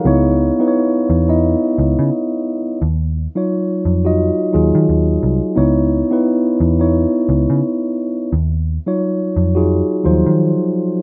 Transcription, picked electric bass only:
X:1
M:4/4
L:1/16
Q:"Swing 16ths" 1/4=87
K:D#phr
V:1 name="Picked electric bass" clef=bass
C,,3 z3 E,,3 z C,, C, z4 | D,,3 z3 ^E,,3 z D,, D, D,,2 ^B,,, z | C,,3 z3 E,,3 z C,, C, z4 | D,,3 z3 ^E,,3 z D,, D,2 z3 |]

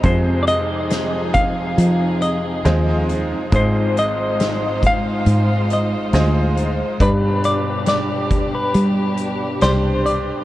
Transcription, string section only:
X:1
M:4/4
L:1/8
Q:1/4=69
K:Ablyd
V:1 name="String section"
[F,CEA]8 | [A,EFc]8 | [=B,,DG]8 |]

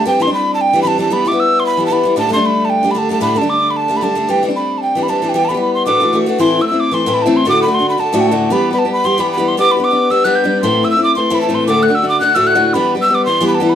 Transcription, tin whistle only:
X:1
M:4/4
L:1/16
Q:"Swing" 1/4=227
K:Dmix
V:1 name="Tin whistle"
g2 c'2 b3 a g3 b a2 a2 | b2 d'2 e'3 c' b3 a b4 | a2 c'2 b3 a g3 b a2 a2 | b2 a2 d'3 b a3 b a4 |
g2 z2 b3 a g3 b a3 g | g3/2 a/2 b2 b2 c'2 d'6 z2 | c'3 e' e'2 d'2 c'3 b a2 c'2 | d'2 b2 c'2 b2 a3 g a4 |
b3 b a2 b2 c'2 b2 b2 c'2 | d'2 b2 d'4 e'2 f'2 g'4 | c'3 e' e'2 d'2 c'3 b a2 c'2 | d'2 f'2 e'2 d'2 f'2 e'2 f'4 |
b3 z e'2 d'2 c'3 b a2 b2 |]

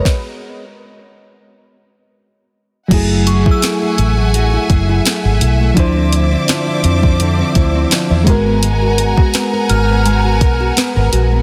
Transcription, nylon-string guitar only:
X:1
M:4/4
L:1/16
Q:"Swing 16ths" 1/4=84
K:G#phr
V:1 name="Nylon-string guitar"
z16 | F, E G E A, G E A, F, E G E A, G E A, | =D, =C E C =F, E C F, D, C E C F, E G, B, | G, F ^A F B, A F B, G, F A F B, A F B, |]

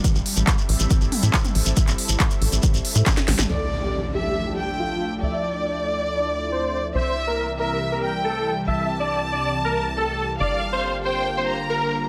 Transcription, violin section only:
X:1
M:4/4
L:1/8
Q:1/4=139
K:Dm
V:1 name="Violin section"
z8 | z8 | d3 e2 g3 | d8 |
e3 e2 g3 | a8 | f3 g2 b3 |]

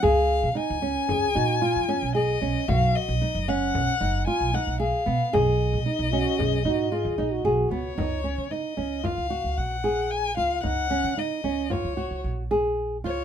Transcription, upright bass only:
X:1
M:5/4
L:1/16
Q:1/4=113
K:Dbmix
V:1 name="Upright bass" clef=bass
D,,3 D, z D,,2 z D,,2 B,,3 F,,2 C,,3 C,, z | C,,2 z C,, z G,,,3 C,, z G,,,2 z C,, z C,,2 z C, z | C,,3 C, z C,,2 z C,,2 A,,3 E,, B,,,2 C,,2 D,,2 | D,,3 D,2 z D,,3 D,,2 D,, B,,,6 D,,2 |
D,,3 D,2 z D,,3 D,,2 D,, B,,,6 D,,2 |]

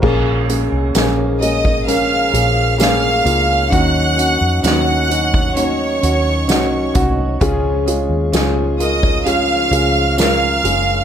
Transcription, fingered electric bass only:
X:1
M:4/4
L:1/16
Q:1/4=65
K:Bbm
V:1 name="Fingered electric bass" clef=bass
B,,,3 C,, B,,,6 B,,,4 D,,2 | E,,3 F,, E,,6 E,,2 C,,2 C,,2 | D,,3 E,, D,,6 D,,4 G,,,2 |]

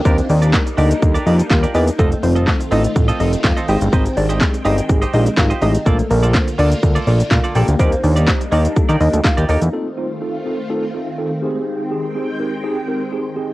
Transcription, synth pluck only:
X:1
M:4/4
L:1/16
Q:1/4=124
K:Fmix
V:1 name="Synth pluck"
[Cc]2 [Dd]2 z2 [Ee]2 z2 [Ee]2 [Ff] z [Ee] z | [A,A]2 [Cc]2 z2 [Ee]2 z2 [Ee]2 [Ff] z [Gg] z | [Cc]2 [Dd]2 z2 [Ee]2 z2 [Ee]2 [Ff] z [Ee] z | [A,A]2 [B,B]2 z2 [Dd]2 z2 [Dd]2 [Ff] z [Gg] z |
[Cc]2 [Dd]2 z2 [Ee]2 z2 [Ee]2 [Ff] z [Ee] z | z16 | z16 |]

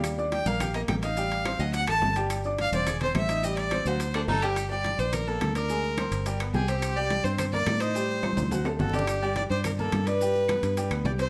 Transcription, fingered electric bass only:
X:1
M:4/4
L:1/8
Q:1/4=213
K:Gm
V:1 name="Fingered electric bass" clef=bass
E,,3 B,,,3 A,,,2- | A,,,3 D,,2 A,,, G,,,2- | G,,,3 =E,,,3 A,,,2- | A,,,3 D,,3 G,,,2- |
G,,,3 B,,,3 D,,2- | D,,3 G,,,3 C,,2- | C,,3 G,,3 A,,2- | A,,3 D,,3 G,,,2- |
G,,,3 G,,3 G,,2- | G,,3 G,,2 D,, C,,2 |]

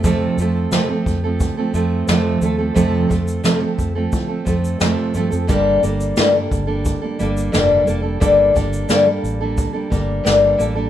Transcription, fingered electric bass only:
X:1
M:4/4
L:1/16
Q:1/4=88
K:Gm
V:1 name="Fingered electric bass" clef=bass
F,,2 F,,2 F,2 F,,3 z F,,2 F,,2 E,,2 | F,,2 F,,2 F,2 F,,2 F,2 F,,2 F,, z G,, F,, | G,,,2 G,,,2 G,,2 G,,,3 z G,,,2 F,,,2 F,,,2 | G,,,2 G,,,2 G,,2 A,,,3 z G,,,2 G,,,2 A,,,2 |]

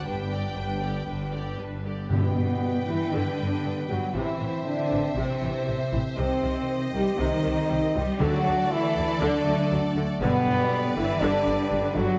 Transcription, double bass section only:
X:1
M:4/4
L:1/8
Q:1/4=118
K:G
V:1 name="Double bass section" clef=bass
G,,,2 G,,,2 G,,,2 G,,,2 | G,, G,, z G,, G,, G,, G,, G,, | A,,, A,,, z A,,, A,,, A,,, A,,, A,,, | C,, C,, z C,, C,, C,, C,, C,, |
D,, D,, z D,, D,, D,, D,, D,, | G,,, G,,, z G,,, G,,, G,,, G,,, G,,, |]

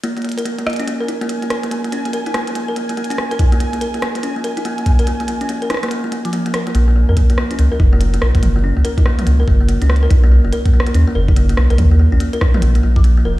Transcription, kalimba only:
X:1
M:4/4
L:1/16
Q:"Swing 16ths" 1/4=143
K:Bbphr
V:1 name="Kalimba"
B, B, B, B B, B, B, D B, B E B, B, B, B B, | B, B, D B, B E B, B, B, B B, B, B, D B, B | E B, B, B, B B, B, B, D B, B E B, B, B, B | B, B, B, D B, B E B, B, B, B, F, B, B, B B, |
B, B, B, B B, B, B, D B, B E B, B, B, B B, | B, B, D B, B E B, B, B, B B, B, B, D B, B | ^D ^A, A, A, ^A A, A, A, ^C A, A D A, A, A, A | B, B, B, D B, B E B, B, B, B, F, B, B, B z |]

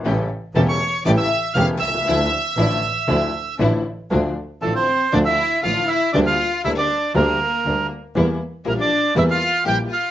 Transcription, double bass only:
X:1
M:4/4
L:1/8
Q:1/4=119
K:Dm
V:1 name="Double bass" clef=bass
A,,, z E,,, z A,,, z E,,, C,, | D,, z A,,, z D,, z A,,, z | D,, z A,,, z D,, z A,,, z | D,, z D,, z D,, z D,, z |
E,, z B,,, z E,, z B,,, z |]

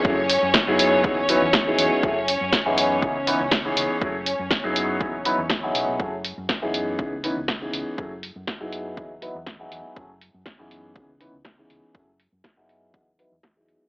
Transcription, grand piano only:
X:1
M:4/4
L:1/16
Q:1/4=121
K:E
V:1 name="Grand piano"
[F,A,CEG] z4 [F,B,DEG]3 [F,B,DEG] z [F,B,DEB] z2 [F,B,DEG]3 | [F,A,CEG] z4 [E,B,CDG]3 [E,B,CDG] z [E,B,CDB] z2 [E,B,CDG]3 | [F,A,CEG] z4 [F,B,DEG]3 [F,B,DEG] z [F,B,DEB] z2 [F,B,DEG]3 | [F,A,CEG] z4 [E,B,CDG]3 [E,B,CDG] z [E,B,CDB] z2 [E,B,CDG]3 |
[F,A,CEG] z4 [F,B,DEG]3 [B,EG] z [F,B,DEB] z2 [F,B,DEG]3 | [F,A,CEG] z4 [E,B,CDG]3 [E,B,DG] z [E,B,CDB] z2 [E,B,CDG]3 | [F,A,CEG] z4 [F,B,DEG]3 [F,B,G] z [F,B,DEB] z2 [F,B,DEG]3 |]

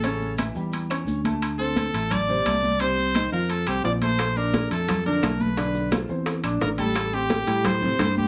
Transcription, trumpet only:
X:1
M:4/4
L:1/8
Q:1/4=173
K:Aphr
V:1 name="Trumpet"
A2 z6 | z A3 d4 | c3 B A G d c- | c B2 A2 B2 =B- |
=B2 z4 _B A- | A G3 c3 G |]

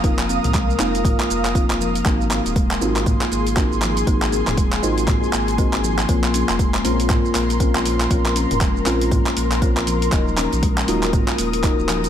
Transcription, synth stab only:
X:1
M:4/4
L:1/8
Q:"Swing 16ths" 1/4=119
K:Bbm
V:1 name="Synth stab"
[B,CEFB]3 [B,CEFB]3 [B,CEFB]2 | [A,CEGB]3 [A,CEGB]3 [A,CEGB]2 | [A,CEGB]3 [A,CEGB]3 [A,CEGB]2 | [B,CDFB]3 [B,CDFB]3 [B,CDFB]2 |
[B,CDFB]3 [B,CDFB]3 [B,CDFB]2 | [G,B,EGB]3 [G,B,EGB]3 [G,B,EGB]2 |]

